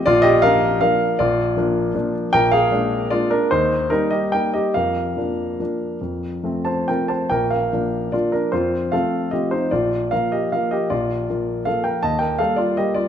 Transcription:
<<
  \new Staff \with { instrumentName = "Grand piano" } { \time 3/4 \key bes \major \tempo 4 = 153 <f' d''>8 <g' ees''>8 <bes' f''>4 <bes' f''>4 | <f' d''>2~ <f' d''>8 r8 | <bes' g''>8 <aes' f''>4. <f' d''>8 <d' bes'>8 | <ees' c''>4 <ees' bes'>8 <g' ees''>8 <bes' g''>8 <g' ees''>8 |
<bes' f''>2.~ | <bes' f''>4. <c'' a''>8 <bes' g''>8 <c'' a''>8 | <bes' g''>8 <bes' f''>4. <f' d''>8 <d' bes'>8 | <f' c''>4 <a' f''>4 <g' ees''>8 <ees' c''>8 |
<f' d''>4 <bes' f''>8 <g' ees''>8 <bes' f''>8 <g' ees''>8 | <f' d''>2 <a' f''>8 <bes' g''>8 | <ees'' a''>8 <bes' g''>8 <a' f''>8 <f' d''>8 <g' ees''>8 <f' d''>8 | }
  \new Staff \with { instrumentName = "Grand piano" } { \time 3/4 \key bes \major bes,,4 <f bes d'>4 <f bes d'>4 | bes,,4 <f bes d'>4 <f bes d'>4 | bes,,4 <aes bes d'>4 <aes bes d'>4 | ees,4 <g bes>4 <g bes ees'>4 |
f,4 <f bes d'>4 <f bes d'>4 | f,4 <f a c'>4 <f a c'>4 | bes,,4 <f bes d'>4 <f bes d'>4 | f,4 <f a c'>4 <f a c'>4 |
bes,,4 <f bes>4 <f bes>4 | bes,,4 <f bes>4 <f bes>4 | ees,4 <g bes>4 <g bes>4 | }
>>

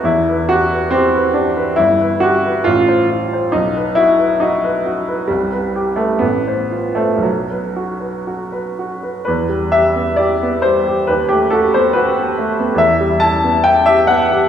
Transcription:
\new Staff \with { instrumentName = "Upright piano" } { \time 2/4 \key e \minor \tempo 4 = 68 << { e,16 b'16 g'16 b'16 g'16 b'16 g'16 b'16 | g,,16 b'16 g'16 b'16 a,,16 c''16 f'16 c''16 | b,,16 b'16 fis'16 b'16 fis'16 b'16 fis'16 b'16 | c,16 b'16 g'16 b'16 a,,16 c''16 f'16 c''16 |
b,,16 b'16 fis'16 b'16 fis'16 b'16 fis'16 b'16 | e,16 g16 g'16 b16 g'16 b16 g16 g'16 | dis,16 a16 fis'16 b16 fis'16 b16 a16 b16 | e,16 g16 e'16 b16 e'16 g'16 b16 g'16 | } \\ { e'8 fis'8 c'8 d'8 | e'8 fis'8 f'4 | dis'8 e'8 dis'8 r8 | g8. a16 b8. a16 |
fis4 r4 | b'8 e''8 d''8 c''8 | b'16 g'16 a'16 c''16 b'4 | e''8 a''8 g''16 e''16 fis''8 | } >> }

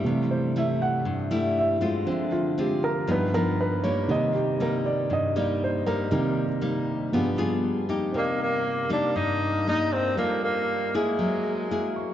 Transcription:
<<
  \new Staff \with { instrumentName = "Grand piano" } { \time 4/4 \key c \minor \tempo 4 = 118 r8 c''8 e''8 fis''4. e''8 r8 | r8 f'8 g'8 bes'8 b'8 ais'8 b'8 des''8 | ees''8 g'8 bes'8 d''8 ees''8 d''8 c''8 bes'8~ | bes'4 r2. |
r1 | r2. e''8 cis'''8 | }
  \new Staff \with { instrumentName = "Grand piano" } { \time 4/4 \key c \minor <c e a>1 | <d f c'>4. r8 <g, f b>8 r4. | <c ees bes>4. r2 r8 | <c ees bes>8 r4. <g, f b>2 |
<c' g' bes' d'' ees''>2.~ <c' g' bes' d'' ees''>8 <c' g' bes' d'' f''>8 | <g a' d'' f''>2 <fis gis' ais' cis'' e''>2 | }
  \new Staff \with { instrumentName = "Nylon-string guitar" } { \time 4/4 \key c \minor << { <g a e'>4 <g a e'>4 r8 <g a e'>4 <aes c' f'>8~ | <aes c' f'>4 <aes c' f'>8 r8 <f b dis'>8 <f b dis'>4 <g ais dis'>8~ | <g ais dis'>4 <g bes ees'>4 r8 <g bes ees'>4 <g bes ees'>8 | <g bes ees'>8 r8 <g bes ees'>4 <b f' aes'>8 <b f' aes'>4 <bes ees' g'>8~ |
<bes ees' g'>4 r8 <g bes ees'>4. <g bes ees'>4 | <bes f' a'>4. <bes e' aes'>4. <ais e' gis'>4 | } \\ { c2 g,2 | d2 g,2 | c2 g,2 | c2 g2 |
c2 g,2 | g2 fis2 | } >> }
  \new Staff \with { instrumentName = "Tenor saxophone" } { \time 4/4 \key c \minor r1 | r1 | r1 | r1 |
bes8 bes4 d'8 ees'4 ees'8 c'8 | bes8 bes4 aes2 r8 | }
>>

